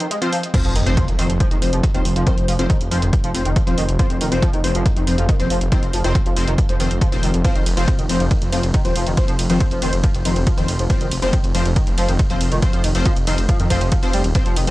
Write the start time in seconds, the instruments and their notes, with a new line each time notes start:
0.00 closed hi-hat
0.11 analog synth lead G#3, closed hi-hat
0.22 synth stab F3 C4 C5, analog synth lead F4, closed hi-hat
0.32 analog synth lead F3, open hi-hat
0.43 closed hi-hat
0.54 synth stab F3 C4 C5, kick, closed hi-hat, crash, impact
0.65 detuned saw bass F1, analog synth lead F3, closed hi-hat
0.75 detuned saw bass F1, analog synth lead D#3, open hi-hat
0.86 detuned saw bass F1, synth stab F3 C4 C5, closed hi-hat
0.97 analog synth lead F3, kick, closed hi-hat
1.08 detuned saw bass F1, closed hi-hat
1.19 detuned saw bass F1, analog synth lead D#3, synth stab F3 C4 C5, open hi-hat
1.30 detuned saw bass F1, closed hi-hat
1.40 analog synth lead F3, kick, closed hi-hat
1.51 detuned saw bass F1, analog synth lead D#3, closed hi-hat
1.62 detuned saw bass F1, synth stab F3 C4 C5, open hi-hat
1.73 detuned saw bass F1, analog synth lead F3, closed hi-hat
1.83 kick, closed hi-hat
1.94 detuned saw bass D#1, analog synth lead D#3, synth stab F3 C4 C5, closed hi-hat
2.05 detuned saw bass F1, open hi-hat
2.16 detuned saw bass F1, analog synth lead F3, closed hi-hat
2.27 analog synth lead D#3, synth stab F3 C4 C5, kick, closed hi-hat
2.37 detuned saw bass F1, closed hi-hat
2.48 detuned saw bass F1, analog synth lead F3, open hi-hat
2.59 detuned saw bass F1, synth stab F3 C4 C5, closed hi-hat
2.70 analog synth lead D#3, kick, closed hi-hat
2.81 detuned saw bass F1, closed hi-hat
2.91 detuned saw bass F1, analog synth lead F3, synth stab F3 C4 C5, open hi-hat
3.02 detuned saw bass F1, analog synth lead D#3, closed hi-hat
3.13 kick, closed hi-hat
3.24 detuned saw bass F1, analog synth lead F3, closed hi-hat
3.34 detuned saw bass F1, synth stab F3 C4 C5, open hi-hat
3.45 detuned saw bass F1, analog synth lead D#3, closed hi-hat
3.56 kick, closed hi-hat
3.67 detuned saw bass D#1, synth stab F3 C4 C5, analog synth lead F3, closed hi-hat
3.78 detuned saw bass F1, analog synth lead D#3, open hi-hat
3.88 detuned saw bass F1, closed hi-hat
3.99 synth stab F3 C4 C5, analog synth lead F3, kick, closed hi-hat
4.10 detuned saw bass F1, closed hi-hat
4.21 detuned saw bass F1, analog synth lead D#3, open hi-hat
4.32 detuned saw bass F1, synth stab F3 C4 C5, closed hi-hat
4.42 analog synth lead F3, kick, closed hi-hat
4.53 detuned saw bass F1, analog synth lead D#3, closed hi-hat
4.64 detuned saw bass F1, synth stab F3 C4 C5, open hi-hat
4.75 detuned saw bass F1, analog synth lead F3, closed hi-hat
4.86 kick, closed hi-hat
4.96 detuned saw bass F1, analog synth lead D#3, closed hi-hat
5.07 detuned saw bass F1, synth stab F3 C4 C5, open hi-hat
5.18 detuned saw bass F1, analog synth lead F3, closed hi-hat
5.29 analog synth lead D#3, kick, closed hi-hat
5.40 detuned saw bass D#1, synth stab F3 C4 C5, closed hi-hat
5.50 detuned saw bass F1, analog synth lead F3, open hi-hat
5.61 detuned saw bass F1, closed hi-hat
5.72 analog synth lead D#3, synth stab F3 C4 C5, kick, closed hi-hat
5.83 detuned saw bass F1, closed hi-hat
5.93 detuned saw bass F1, analog synth lead F3, open hi-hat
6.04 detuned saw bass F1, analog synth lead D#3, synth stab F3 C4 C5, closed hi-hat
6.15 kick, closed hi-hat
6.26 detuned saw bass F1, analog synth lead F3, closed hi-hat
6.37 detuned saw bass F1, synth stab F3 C4 C5, open hi-hat
6.48 detuned saw bass F1, analog synth lead D#3, closed hi-hat
6.58 kick, closed hi-hat
6.69 detuned saw bass F1, analog synth lead F3, closed hi-hat
6.80 detuned saw bass F1, analog synth lead D#3, synth stab F3 C4 C5, open hi-hat
6.91 detuned saw bass F1, closed hi-hat
7.01 analog synth lead F3, kick, closed hi-hat
7.12 detuned saw bass D#1, synth stab F3 C4 C5, closed hi-hat
7.23 detuned saw bass F1, analog synth lead D#3, open hi-hat
7.34 detuned saw bass F1, closed hi-hat
7.44 synth stab F3 C4 C5, analog synth lead F3, kick, closed hi-hat, ride
7.55 detuned saw bass F1, analog synth lead D#3, closed hi-hat
7.66 detuned saw bass F1, open hi-hat, ride
7.77 detuned saw bass F1, synth stab F3 C4 C5, analog synth lead F3, closed hi-hat
7.88 kick, closed hi-hat, ride
7.99 detuned saw bass F1, analog synth lead D#3, closed hi-hat
8.09 detuned saw bass F1, synth stab F3 C4 C5, open hi-hat, ride
8.20 detuned saw bass F1, analog synth lead F3, closed hi-hat
8.31 analog synth lead D#3, kick, closed hi-hat, ride
8.42 detuned saw bass F1, closed hi-hat
8.52 detuned saw bass F1, analog synth lead F3, synth stab F3 C4 C5, open hi-hat, ride
8.63 detuned saw bass F1, closed hi-hat
8.74 analog synth lead D#3, kick, closed hi-hat, ride
8.85 detuned saw bass D#1, synth stab F3 C4 C5, closed hi-hat
8.95 detuned saw bass F1, analog synth lead F3, open hi-hat, ride
9.06 detuned saw bass F1, analog synth lead D#3, closed hi-hat
9.17 synth stab F3 C4 C5, kick, closed hi-hat, ride
9.28 detuned saw bass F1, analog synth lead F3, closed hi-hat
9.39 detuned saw bass F1, open hi-hat, ride
9.50 detuned saw bass F1, analog synth lead D#3, synth stab F3 C4 C5, closed hi-hat
9.60 kick, closed hi-hat, ride
9.71 detuned saw bass F1, analog synth lead F3, closed hi-hat
9.82 detuned saw bass F1, analog synth lead D#3, synth stab F3 C4 C5, open hi-hat, ride
9.93 detuned saw bass F1, closed hi-hat
10.04 analog synth lead F3, kick, closed hi-hat, ride
10.14 detuned saw bass F1, closed hi-hat
10.25 detuned saw bass F1, analog synth lead D#3, synth stab F3 C4 C5, open hi-hat, ride
10.36 detuned saw bass F1, closed hi-hat
10.47 analog synth lead F3, kick, closed hi-hat, ride
10.57 detuned saw bass D#1, analog synth lead D#3, synth stab F3 C4 C5, closed hi-hat
10.68 detuned saw bass F1, open hi-hat, ride
10.79 detuned saw bass F1, analog synth lead F3, closed hi-hat
10.90 synth stab F3 C4 C5, kick, closed hi-hat, ride
11.01 detuned saw bass F1, analog synth lead D#3, closed hi-hat
11.11 detuned saw bass F1, open hi-hat, ride
11.22 detuned saw bass F1, analog synth lead F3, synth stab F3 C4 C5, closed hi-hat
11.33 analog synth lead D#3, kick, closed hi-hat, ride
11.44 detuned saw bass F1, closed hi-hat
11.55 detuned saw bass F1, analog synth lead F3, synth stab F3 C4 C5, open hi-hat, ride
11.65 detuned saw bass F1, closed hi-hat
11.76 analog synth lead D#3, kick, closed hi-hat, ride
11.87 detuned saw bass F1, closed hi-hat
11.98 detuned saw bass F1, analog synth lead F3, synth stab F3 C4 C5, open hi-hat, ride
12.09 detuned saw bass F1, analog synth lead D#3, closed hi-hat
12.19 kick, closed hi-hat, ride
12.30 detuned saw bass D#1, analog synth lead F3, synth stab F3 C4 C5, closed hi-hat
12.41 detuned saw bass F1, open hi-hat, ride
12.52 detuned saw bass F1, analog synth lead D#3, closed hi-hat
12.62 synth stab F3 C4 C5, kick, closed hi-hat, ride
12.73 detuned saw bass F1, analog synth lead F3, closed hi-hat
12.84 detuned saw bass F1, analog synth lead D#3, open hi-hat, ride
12.95 detuned saw bass F1, synth stab F3 C4 C5, closed hi-hat
13.06 analog synth lead F3, kick, closed hi-hat, ride
13.16 detuned saw bass F1, closed hi-hat
13.27 detuned saw bass F1, analog synth lead D#3, synth stab F3 C4 C5, open hi-hat, ride
13.38 detuned saw bass F1, closed hi-hat
13.49 analog synth lead F3, kick, closed hi-hat, ride
13.60 detuned saw bass F2, analog synth lead D#3, closed hi-hat
13.70 detuned saw bass F1, analog synth lead F3, synth stab F3 C4 C5, kick, open hi-hat, ride
13.81 detuned saw bass F1, analog synth lead F3, closed hi-hat
13.92 analog synth lead F3, kick, closed hi-hat, ride
14.03 detuned saw bass F1, analog synth lead F3, synth stab F3 C4 C5, closed hi-hat
14.13 detuned saw bass F1, analog synth lead G3, open hi-hat, ride
14.24 detuned saw bass D#1, closed hi-hat
14.35 synth stab F3 C4 C5, kick, closed hi-hat, ride
14.46 detuned saw bass F1, analog synth lead F3, closed hi-hat
14.56 detuned saw bass F1, analog synth lead D#3, open hi-hat, ride
14.67 detuned saw bass F1, closed hi-hat